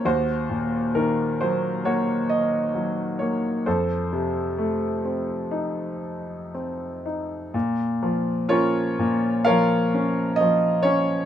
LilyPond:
<<
  \new Staff \with { instrumentName = "Grand piano" } { \time 4/4 \key bes \minor \tempo 4 = 65 << { c''4 bes'8 c''8 des''8 ees''4 des''8 | c''2. r4 | r4 des''4 f''4 ees''8 des''8 | } \\ { ges'2 ges'2 | a'2. r4 | r4 <f' bes'>4 <bes' des''>2 | } >> }
  \new Staff \with { instrumentName = "Grand piano" } { \clef bass \time 4/4 \key bes \minor ees,8 bes,8 ees8 ges8 bes4 ges8 bes8 | f,8 c8 a8 c'8 ees'4 c'8 ees'8 | bes,8 f8 des'8 bes,8 f8 des'8 f8 des'8 | }
>>